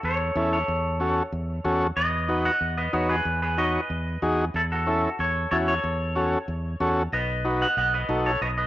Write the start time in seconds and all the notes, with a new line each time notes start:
0.03 E2 A4 C#5
0.35 E2 C#4 E4 A4
0.53 A4 C#5
0.68 E2
1.00 C#4 F#4 A4
1.32 E2
1.64 E2 C#4 F#4 A4
1.96 E2 B4 D#5
2.28 D#4 F#4 B4
2.45 D#5 F#5
2.61 E2
2.78 B4 D#5
2.93 E2 D#4 F#4 B4 C#5
3.09 G#4 B4
3.25 E2
3.42 G#4 B4
3.58 D#4 F#4 B4 C#5 D#5
3.90 E2
4.22 E2 D#4 F#4 G#4
4.54 E2 E4 A4
4.72 F#4 A4
4.87 C#4 E4 A4
5.19 E2 A4 C#5
5.51 E2 C#4 E4 F#4 A4 C#5
5.68 A4 C#5
5.84 E2
6.15 C#4 F#4 A4
6.48 E2
6.80 E2 C#4 F#4 A4
7.12 B1 B4 D#5
7.45 D#4 F#4 B4
7.62 D#5 F#5
7.77 B1 D#5 F#5
7.94 B4 D#5
8.09 B1 D#4 F#4 A4
8.26 A4 C#5
8.41 B1 B4 D#5
8.58 B4 D#5